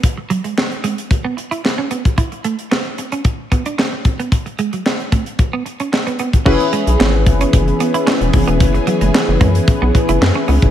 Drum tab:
CC |----------------|----------------|----------------|x---------------|
HH |x-xx-xxxx-xx--xx|xxxx--xxx-xx--xx|xxxx-xxxx-xx-xxx|-xxx--xxxxxx-xox|
CP |----x-------x---|----x-------x---|----x-------x---|----x-------x---|
SD |----o-------o---|----o-------o---|----o-------o---|----o-------o---|
BD |o-------o------o|o-------o-o---o-|o-----o-o------o|o-----o-o-----o-|

CC |----------------|
HH |xxxx--xxx-xx--ox|
CP |----x-------x---|
SD |----o-------o---|
BD |o-----o-o-o----o|